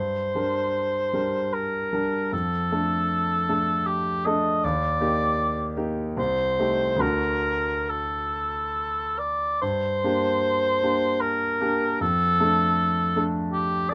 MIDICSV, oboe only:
0, 0, Header, 1, 2, 480
1, 0, Start_track
1, 0, Key_signature, -2, "minor"
1, 0, Tempo, 800000
1, 1395, Time_signature, 3, 2, 24, 8
1, 1395, Tempo, 770218
1, 3795, Tempo, 859599
1, 5715, Tempo, 820793
1, 6195, Tempo, 784314
1, 7155, Tempo, 759494
1, 8379, End_track
2, 0, Start_track
2, 0, Title_t, "Oboe"
2, 0, Program_c, 0, 68
2, 0, Note_on_c, 0, 72, 56
2, 920, Note_on_c, 0, 70, 47
2, 929, Note_off_c, 0, 72, 0
2, 1394, Note_off_c, 0, 70, 0
2, 1397, Note_on_c, 0, 69, 55
2, 2352, Note_on_c, 0, 67, 55
2, 2361, Note_off_c, 0, 69, 0
2, 2600, Note_on_c, 0, 75, 64
2, 2609, Note_off_c, 0, 67, 0
2, 2838, Note_on_c, 0, 74, 63
2, 2847, Note_off_c, 0, 75, 0
2, 3621, Note_off_c, 0, 74, 0
2, 3798, Note_on_c, 0, 72, 63
2, 4261, Note_on_c, 0, 70, 63
2, 4270, Note_off_c, 0, 72, 0
2, 4756, Note_on_c, 0, 69, 46
2, 4765, Note_off_c, 0, 70, 0
2, 5475, Note_on_c, 0, 74, 50
2, 5484, Note_off_c, 0, 69, 0
2, 5713, Note_off_c, 0, 74, 0
2, 5716, Note_on_c, 0, 72, 61
2, 6666, Note_on_c, 0, 70, 57
2, 6675, Note_off_c, 0, 72, 0
2, 7153, Note_off_c, 0, 70, 0
2, 7160, Note_on_c, 0, 69, 67
2, 7941, Note_off_c, 0, 69, 0
2, 8115, Note_on_c, 0, 67, 60
2, 8350, Note_on_c, 0, 74, 69
2, 8359, Note_off_c, 0, 67, 0
2, 8379, Note_off_c, 0, 74, 0
2, 8379, End_track
0, 0, End_of_file